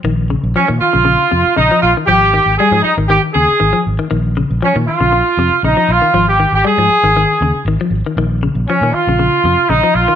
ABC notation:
X:1
M:4/4
L:1/16
Q:1/4=118
K:Bbdor
V:1 name="Horn section"
z4 D2 F6 E2 F2 | G4 A2 E2 G2 A4 z2 | z4 D2 F6 E2 F2- | F G2 G A8 z4 |
z4 D2 F6 E2 F2 |]
V:2 name="Clean electric guitar" clef=bass
E,2 D,2 F, E,2 D, D,2 C,2 D, F,2 E, | F,2 E,2 G, F,2 E, E,2 D,2 E, F,2 E, | E,2 D,2 F, E,2 D, z2 C,2 D, F,2 E, | F,2 E,2 G, F,2 E, E,2 D,2 E, F,2 E, |
E,2 D,2 F, E,2 D, D,2 C,2 D, F,2 E, |]
V:3 name="Fingered electric bass" clef=bass
B,,,3 B,,, z B,, z B,,,2 z F,, z B,,, z B,,, z | A,,,3 A,,, z A,, z A,,,2 z E,, z A,,, z A,,, z | B,,,3 B,,, z B,, z B,,,2 z F,, z B,,, z B,,, z | A,,,3 A,,, z A,, z A,,,2 z E,, z A,,, z A,,, z |
B,,,3 B,,, z B,, z B,,,2 z F,, z B,,, z B,,, z |]